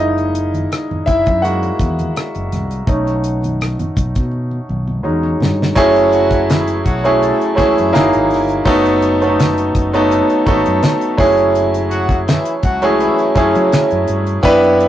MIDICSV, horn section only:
0, 0, Header, 1, 2, 480
1, 0, Start_track
1, 0, Tempo, 722892
1, 1906, Time_signature, 4, 2, 24, 8
1, 9882, End_track
2, 0, Start_track
2, 0, Title_t, "Horn section"
2, 0, Program_c, 0, 61
2, 4067, Note_on_c, 0, 54, 74
2, 4068, Note_on_c, 0, 66, 78
2, 4259, Note_off_c, 0, 54, 0
2, 4259, Note_off_c, 0, 66, 0
2, 4306, Note_on_c, 0, 52, 65
2, 4306, Note_on_c, 0, 64, 72
2, 4498, Note_off_c, 0, 52, 0
2, 4498, Note_off_c, 0, 64, 0
2, 4543, Note_on_c, 0, 66, 78
2, 4545, Note_on_c, 0, 54, 64
2, 4736, Note_off_c, 0, 66, 0
2, 4738, Note_off_c, 0, 54, 0
2, 4782, Note_on_c, 0, 69, 78
2, 4783, Note_on_c, 0, 57, 71
2, 4976, Note_off_c, 0, 57, 0
2, 4976, Note_off_c, 0, 69, 0
2, 5026, Note_on_c, 0, 64, 90
2, 5029, Note_on_c, 0, 52, 76
2, 5374, Note_off_c, 0, 64, 0
2, 5375, Note_off_c, 0, 52, 0
2, 7903, Note_on_c, 0, 54, 81
2, 7904, Note_on_c, 0, 66, 89
2, 8096, Note_off_c, 0, 54, 0
2, 8097, Note_off_c, 0, 66, 0
2, 8144, Note_on_c, 0, 52, 72
2, 8144, Note_on_c, 0, 64, 79
2, 8337, Note_off_c, 0, 52, 0
2, 8337, Note_off_c, 0, 64, 0
2, 8385, Note_on_c, 0, 54, 71
2, 8386, Note_on_c, 0, 66, 78
2, 8577, Note_off_c, 0, 54, 0
2, 8578, Note_off_c, 0, 66, 0
2, 8626, Note_on_c, 0, 64, 82
2, 8627, Note_on_c, 0, 52, 72
2, 8818, Note_off_c, 0, 52, 0
2, 8818, Note_off_c, 0, 64, 0
2, 8866, Note_on_c, 0, 61, 82
2, 8867, Note_on_c, 0, 49, 76
2, 9214, Note_off_c, 0, 49, 0
2, 9214, Note_off_c, 0, 61, 0
2, 9882, End_track
0, 0, End_of_file